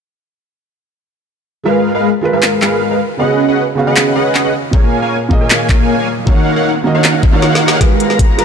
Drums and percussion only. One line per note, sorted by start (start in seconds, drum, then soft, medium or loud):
2.42 finger snap medium
2.42 clap loud
2.62 clap medium
3.96 finger snap medium
3.96 clap loud
4.35 clap medium
4.73 kick loud
5.31 kick medium
5.50 finger snap medium
5.50 clap loud
5.69 kick loud
5.69 clap medium
6.27 kick loud
7.04 finger snap medium
7.04 clap loud
7.23 kick loud
7.42 snare medium
7.55 snare medium
7.68 snare medium
7.81 kick medium
7.81 snare soft
7.81 closed hi-hat medium
8.00 closed hi-hat medium
8.10 snare soft
8.19 kick medium
8.19 closed hi-hat medium
8.39 snare soft
8.39 closed hi-hat medium